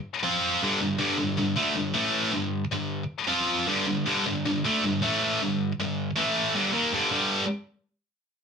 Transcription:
0.23 0.60 F3 loud
0.23 0.60 C4 loud
0.23 0.61 F4 loud
0.63 0.80 G2 loud
0.63 0.80 D3 loud
0.81 0.97 G2 medium
0.81 0.99 D3 medium
0.98 1.17 G2 loud
0.98 1.17 D3 loud
1.18 1.36 G2 medium
1.18 1.36 D3 medium
1.37 1.57 G2 medium
1.37 1.55 D3 medium
1.56 1.74 D3 loud
1.56 1.75 A3 loud
1.74 1.94 G2 medium
1.74 1.94 D3 medium
1.94 2.32 A2 loud
1.94 2.32 E3 loud
1.94 2.32 A3 loud
2.32 2.63 G2 medium
2.32 2.64 D3 medium
2.72 3.02 G2 medium
2.72 3.02 D3 medium
3.28 3.66 F3 loud
3.28 3.66 C4 loud
3.28 3.66 F4 loud
3.67 3.85 G2 medium
3.67 3.85 D3 loud
3.87 4.05 G2 medium
3.87 4.05 D3 medium
4.06 4.24 G2 medium
4.06 4.24 D3 loud
4.26 4.44 G2 medium
4.26 4.45 D3 medium
4.46 4.64 G2 medium
4.46 4.63 D3 medium
4.64 4.82 D3 loud
4.64 4.82 A3 loud
4.84 5.02 G2 medium
4.84 5.02 D3 medium
5.02 5.39 A2 loud
5.02 5.39 E3 loud
5.02 5.39 A3 loud
5.42 5.71 G2 medium
5.42 5.71 D3 medium
5.80 6.09 G2 medium
5.80 6.10 D3 medium
6.16 6.53 A2 loud
6.16 6.53 E3 loud
6.16 6.54 A3 loud
6.55 6.73 G2 loud
6.55 6.72 D3 loud
6.73 6.91 D#3 medium
6.73 6.91 A#3 loud
6.93 7.10 G2 medium
6.93 7.11 D3 loud
7.11 7.42 G2 loud
7.11 7.42 D3 loud
7.11 7.42 G3 loud

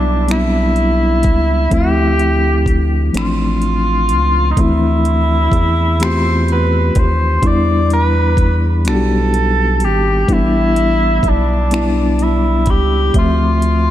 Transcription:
0.00 1.26 B1 medium
0.00 0.11 G3 medium
0.00 0.12 B3 medium
0.00 0.12 D4 medium
0.00 0.33 D4 medium
0.00 0.13 E4 medium
0.27 1.53 G3 medium
0.27 1.54 B3 soft
0.27 0.35 C4 soft
0.27 1.55 E4 medium
0.27 closed hi-hat medium
0.31 1.76 E4 medium
0.31 finger snap medium
0.36 1.58 D4 medium
0.76 closed hi-hat soft
1.23 1.68 C#2 medium
1.23 kick medium
1.23 closed hi-hat medium
1.70 3.11 D2 medium
1.70 2.96 F3 medium
1.70 2.97 A3 medium
1.70 2.97 C4 medium
1.70 2.98 E4 medium
1.70 2.89 G4 loud
1.70 kick loud
1.70 closed hi-hat medium
2.19 closed hi-hat soft
2.66 kick medium
2.66 closed hi-hat soft
3.12 4.12 A1 medium
3.12 4.39 F3 medium
3.12 4.39 A3 soft
3.12 4.40 C4 medium
3.12 4.40 D4 medium
3.12 closed hi-hat medium
3.17 4.53 F4 medium
3.17 finger snap loud
3.62 closed hi-hat soft
4.09 4.54 C#2 medium
4.09 closed hi-hat medium
4.51 4.62 D#4 medium
4.56 5.49 D2 loud
4.56 5.82 E3 medium
4.56 5.83 A3 medium
4.56 5.83 C4 medium
4.56 5.84 E4 medium
4.56 kick loud
4.56 closed hi-hat medium
4.61 6.05 E4 medium
5.05 closed hi-hat soft
5.52 6.91 E2 medium
5.52 kick medium
5.52 closed hi-hat soft
5.99 6.06 E3 soft
5.99 7.26 A3 soft
5.99 7.26 C4 medium
5.99 7.26 G4 medium
5.99 finger snap medium
5.99 closed hi-hat medium
6.04 7.28 F4 medium
6.04 6.50 C5 medium
6.48 7.01 B4 medium
6.48 closed hi-hat soft
6.95 7.39 D#2 medium
6.95 7.48 C5 medium
6.95 kick medium
6.95 closed hi-hat medium
7.42 8.88 E2 loud
7.42 8.68 G3 medium
7.42 8.68 B3 medium
7.42 8.69 D4 medium
7.42 8.69 E4 medium
7.42 kick loud
7.42 closed hi-hat medium
7.47 7.92 D5 loud
7.90 8.56 B4 medium
7.90 closed hi-hat soft
8.37 kick medium
8.37 closed hi-hat soft
8.85 9.84 B1 medium
8.85 10.11 G3 medium
8.85 10.11 B3 soft
8.85 10.12 D4 soft
8.85 8.93 F#4 medium
8.85 finger snap medium
8.85 closed hi-hat medium
8.89 9.86 A4 loud
8.94 10.15 G4 medium
9.34 closed hi-hat soft
9.80 10.25 G#1 medium
9.80 closed hi-hat medium
9.85 10.34 G4 medium
10.27 11.20 A1 loud
10.27 11.53 G3 medium
10.27 11.54 B3 medium
10.27 11.54 D4 medium
10.27 11.55 E4 medium
10.27 kick medium
10.27 closed hi-hat medium
10.33 11.30 E4 medium
10.76 closed hi-hat medium
11.23 12.69 B1 medium
11.23 kick medium
11.23 closed hi-hat soft
11.28 12.24 D4 medium
11.71 12.97 G3 medium
11.71 12.97 B3 medium
11.71 12.98 D4 medium
11.71 12.98 E4 medium
11.71 finger snap medium
11.71 closed hi-hat medium
12.19 12.72 E4 medium
12.19 closed hi-hat soft
12.66 13.11 C#2 medium
12.66 kick medium
12.66 closed hi-hat medium
12.70 13.16 G4 medium
13.14 13.91 D2 loud
13.14 13.91 F3 medium
13.14 13.91 A3 medium
13.14 13.91 C4 medium
13.14 13.91 E5 medium
13.14 kick loud
13.14 closed hi-hat medium
13.19 13.91 F4 medium
13.62 closed hi-hat soft

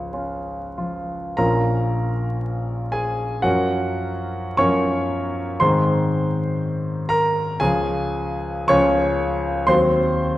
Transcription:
0.00 1.35 C#2 soft
0.00 0.78 F3 soft
0.00 0.14 F4 soft
0.00 0.78 C#5 medium
0.13 0.75 C#4 soft
0.13 0.75 F4 soft
0.78 1.35 F3 soft
0.78 1.35 F4 soft
1.37 3.40 A#1 medium
1.37 3.40 F3 soft
1.37 3.40 C#4 soft
1.37 3.40 F4 soft
1.37 2.90 A#4 medium
1.37 2.93 A#5 medium
2.92 3.41 G#4 medium
2.92 3.44 G#5 medium
3.42 4.55 F#2 medium
3.42 4.55 F3 soft
3.42 4.55 C#4 soft
3.42 4.54 F#4 medium
3.42 4.55 A#4 soft
3.42 4.58 F#5 medium
4.57 5.58 F#2 medium
4.57 5.58 F3 soft
4.57 5.58 C#4 soft
4.57 5.58 A#4 medium
4.57 5.57 C#5 medium
4.57 5.60 C#6 medium
5.60 7.58 G#2 medium
5.60 7.57 D#3 soft
5.60 7.58 C4 soft
5.60 7.58 G#4 soft
5.60 7.06 C5 medium
5.60 7.10 C6 medium
7.09 7.58 A#4 medium
7.09 7.61 A#5 medium
7.60 8.66 C#2 medium
7.60 8.66 F3 medium
7.60 8.66 C#4 soft
7.60 8.66 G#4 medium
7.60 8.69 G#5 medium
8.68 9.66 C#2 medium
8.68 9.66 F3 medium
8.68 9.65 C#4 medium
8.68 9.66 G#4 medium
8.68 9.64 C#5 medium
8.68 9.68 C#6 loud
9.67 10.38 D#2 medium
9.67 10.38 F#3 medium
9.67 10.38 C4 medium
9.67 10.38 F#4 soft
9.67 10.38 C5 medium
9.67 10.38 C6 loud

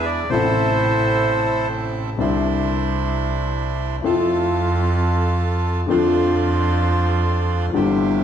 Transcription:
0.00 0.21 E2 medium
0.00 0.22 E2 medium
0.00 0.21 D3 soft
0.00 0.22 E3 medium
0.00 0.21 G#3 soft
0.00 0.22 B3 soft
0.00 0.22 D4 medium
0.00 0.22 E4 medium
0.00 0.23 E4 medium
0.00 0.22 G#4 medium
0.00 0.10 E5 medium
0.05 0.30 D5 medium
0.30 2.09 A1 medium
0.30 2.10 A2 medium
0.30 2.08 C3 soft
0.30 2.09 E3 soft
0.30 2.10 A3 soft
0.30 2.10 C4 medium
0.30 1.68 E4 medium
0.30 2.10 E4 medium
0.30 1.68 A4 medium
0.30 2.10 A4 medium
0.30 1.67 C5 medium
0.34 2.11 E4 medium
2.17 3.95 C2 medium
2.17 3.96 C2 medium
2.17 3.96 C3 medium
2.17 3.95 D3 soft
2.17 3.95 G3 soft
2.17 3.96 C4 soft
2.17 3.96 D4 medium
2.17 3.96 E4 medium
2.17 3.96 C5 medium
2.21 3.97 E4 medium
4.02 5.80 F2 medium
4.02 5.80 F3 medium
4.02 5.80 A3 medium
4.02 5.81 C4 medium
4.02 5.79 E4 medium
4.02 5.81 F4 medium
4.02 5.81 A4 medium
5.86 7.66 F2 medium
5.86 7.64 D3 medium
5.86 7.65 F3 medium
5.86 7.65 A3 medium
5.86 7.66 C4 medium
5.86 7.66 D4 medium
5.86 7.66 F4 medium
5.86 7.66 C5 medium
7.73 8.24 G1 medium
7.73 8.24 G2 medium
7.73 8.24 E3 medium
7.73 8.24 G3 soft
7.73 8.24 C4 soft
7.73 8.24 E4 medium
7.73 8.24 G4 medium
7.73 8.24 C5 medium

